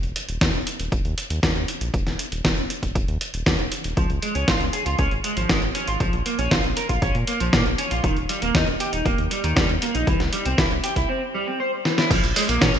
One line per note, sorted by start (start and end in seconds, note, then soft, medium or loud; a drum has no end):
0.03 0.13 D#1 medium
0.03 closed hi-hat soft
0.16 closed hi-hat medium
0.29 0.38 D#1 medium
0.29 closed hi-hat soft
0.41 0.51 D#2 loud
0.41 kick loud
0.41 snare loud
0.41 closed hi-hat soft
0.54 0.64 D#1 medium
0.54 closed hi-hat soft
0.67 closed hi-hat medium
0.79 0.89 D#1 medium
0.79 closed hi-hat medium
0.92 1.02 D#1 medium
0.92 kick loud
0.92 closed hi-hat soft
1.05 1.15 D#2 medium
1.05 closed hi-hat soft
1.18 closed hi-hat medium
1.30 1.40 D#2 medium
1.30 closed hi-hat medium
1.43 1.53 D#2 medium
1.43 kick loud
1.43 snare loud
1.43 closed hi-hat soft
1.56 1.65 D#2 medium
1.56 closed hi-hat soft
1.68 closed hi-hat medium
1.81 1.91 A#1 medium
1.81 closed hi-hat medium
1.94 2.04 D#1 loud
1.94 kick loud
1.94 closed hi-hat soft
2.06 2.16 D#1 medium
2.06 snare soft
2.06 closed hi-hat soft
2.19 closed hi-hat medium
2.32 2.42 D#1 medium
2.32 closed hi-hat soft
2.45 2.54 D#1 loud
2.45 kick loud
2.45 snare loud
2.45 closed hi-hat soft
2.57 2.67 D#1 medium
2.57 closed hi-hat soft
2.70 closed hi-hat medium
2.83 2.93 D#1 medium
2.83 kick medium
2.83 closed hi-hat medium
2.95 3.05 D#1 loud
2.95 kick loud
2.95 closed hi-hat soft
3.08 3.18 D#2 medium
3.08 closed hi-hat soft
3.21 closed hi-hat medium
3.34 3.43 D#1 medium
3.34 closed hi-hat medium
3.46 3.56 D#2 loud
3.46 kick loud
3.46 snare loud
3.46 closed hi-hat soft
3.59 3.69 D#1 medium
3.59 closed hi-hat soft
3.72 closed hi-hat medium
3.84 3.94 D#1 medium
3.84 closed hi-hat medium
3.97 4.07 C#2 loud
3.97 4.09 F3 medium
3.97 kick loud
3.97 closed hi-hat soft
4.10 4.20 C#2 medium
4.10 closed hi-hat soft
4.22 4.33 G#3 medium
4.22 closed hi-hat medium
4.35 4.45 C#2 medium
4.35 4.47 C#4 medium
4.35 closed hi-hat soft
4.48 4.58 G#1 loud
4.48 4.60 F4 medium
4.48 kick loud
4.48 snare loud
4.48 closed hi-hat soft
4.60 4.70 C#2 medium
4.60 closed hi-hat soft
4.73 4.84 G#4 medium
4.73 closed hi-hat medium
4.86 4.96 C#2 medium
4.86 4.97 F4 medium
4.86 closed hi-hat soft
4.99 5.09 C#2 loud
4.99 5.11 C#4 medium
4.99 kick loud
4.99 closed hi-hat soft
5.11 5.21 G#1 medium
5.11 closed hi-hat soft
5.24 5.35 G#3 medium
5.24 closed hi-hat medium
5.37 5.47 G#1 medium
5.37 5.49 F3 medium
5.37 closed hi-hat soft
5.49 5.59 G#1 loud
5.49 5.60 G#3 medium
5.49 kick loud
5.49 snare loud
5.49 closed hi-hat soft
5.62 5.72 G#1 medium
5.62 closed hi-hat soft
5.75 5.87 C#4 medium
5.75 closed hi-hat medium
5.88 5.98 G#1 medium
5.88 5.98 F4 medium
5.88 closed hi-hat soft
6.00 6.10 A#1 medium
6.00 6.13 F3 medium
6.00 kick loud
6.00 closed hi-hat soft
6.13 6.23 A#1 medium
6.13 closed hi-hat soft
6.26 6.37 A#3 medium
6.26 closed hi-hat medium
6.39 6.48 A#1 medium
6.39 6.51 C#4 loud
6.39 closed hi-hat soft
6.51 6.61 A#1 loud
6.51 6.63 F4 medium
6.51 kick loud
6.51 snare loud
6.51 closed hi-hat soft
6.64 6.74 A#1 medium
6.64 closed hi-hat soft
6.77 6.87 A#4 medium
6.77 closed hi-hat medium
6.89 6.99 A#1 medium
6.89 7.00 F4 medium
6.89 kick medium
6.89 closed hi-hat medium
7.02 7.12 A#1 loud
7.02 7.14 C#4 medium
7.02 kick loud
7.02 closed hi-hat soft
7.15 7.25 A#2 medium
7.15 closed hi-hat soft
7.27 7.38 A#3 medium
7.27 closed hi-hat medium
7.40 7.50 A#1 medium
7.40 7.52 F3 loud
7.40 closed hi-hat soft
7.53 7.63 A#2 medium
7.53 7.64 A#3 medium
7.53 kick loud
7.53 snare loud
7.53 closed hi-hat soft
7.66 7.76 A#1 medium
7.66 closed hi-hat soft
7.78 7.91 C#4 medium
7.78 closed hi-hat medium
7.91 8.01 A#1 medium
7.91 8.02 F4 medium
7.91 closed hi-hat soft
8.04 8.14 D#1 loud
8.04 8.16 D#3 medium
8.04 kick loud
8.04 closed hi-hat soft
8.17 8.27 D#1 medium
8.17 closed hi-hat soft
8.29 8.40 G3 medium
8.29 closed hi-hat medium
8.42 8.52 D#1 medium
8.42 8.54 A#3 loud
8.42 closed hi-hat soft
8.55 8.65 D#2 loud
8.55 8.67 D#4 medium
8.55 kick loud
8.55 snare loud
8.55 closed hi-hat soft
8.67 8.77 D#1 medium
8.67 closed hi-hat soft
8.80 8.91 G4 medium
8.80 closed hi-hat medium
8.93 9.03 D#1 medium
8.93 9.04 D#4 medium
8.93 closed hi-hat medium
9.05 9.15 D#1 loud
9.05 9.18 A#3 medium
9.05 kick loud
9.05 closed hi-hat soft
9.18 9.28 D#2 medium
9.18 closed hi-hat soft
9.31 9.42 G3 medium
9.31 closed hi-hat medium
9.44 9.54 D#2 medium
9.44 9.56 D#3 loud
9.44 closed hi-hat medium
9.56 9.66 D#2 medium
9.56 9.67 G3 medium
9.56 kick loud
9.56 snare loud
9.56 closed hi-hat soft
9.69 9.79 D#2 medium
9.69 closed hi-hat soft
9.82 9.94 A#3 medium
9.82 closed hi-hat medium
9.95 10.05 A#1 medium
9.95 10.05 D#4 medium
9.95 closed hi-hat soft
10.07 10.17 C2 loud
10.07 10.19 E3 medium
10.07 kick loud
10.07 closed hi-hat soft
10.20 10.30 C2 medium
10.20 snare soft
10.20 closed hi-hat soft
10.33 10.43 G3 medium
10.33 closed hi-hat medium
10.45 10.55 C2 medium
10.45 10.58 C4 loud
10.45 closed hi-hat soft
10.58 10.68 C2 loud
10.58 10.70 E4 medium
10.58 kick loud
10.58 snare loud
10.58 closed hi-hat medium
10.71 10.81 C2 medium
10.71 closed hi-hat soft
10.84 10.94 G4 medium
10.84 closed hi-hat medium
10.96 11.06 C2 medium
10.96 11.07 E4 medium
10.96 kick medium
10.96 closed hi-hat medium
11.09 11.21 C4 medium
11.34 11.46 G3 loud
11.47 11.58 C4 medium
11.60 11.71 C5 medium
11.85 11.96 E3 medium
11.85 snare medium
11.98 12.09 E4 loud
11.98 snare medium
12.11 12.20 A#1 loud
12.11 12.23 F3 medium
12.11 kick loud
12.11 closed hi-hat medium
12.11 tambourine soft
12.11 crash loud
12.23 12.33 A#1 medium
12.23 closed hi-hat soft
12.23 tambourine soft
12.36 12.47 G#3 medium
12.36 open hi-hat loud
12.36 tambourine medium
12.49 12.59 A#1 medium
12.49 12.61 A#3 loud
12.49 closed hi-hat medium
12.49 tambourine soft
12.61 12.71 A#2 loud
12.61 12.74 C#4 medium
12.61 kick loud
12.61 snare loud
12.61 closed hi-hat medium
12.61 tambourine soft
12.74 12.79 A#1 medium
12.74 closed hi-hat soft
12.74 tambourine soft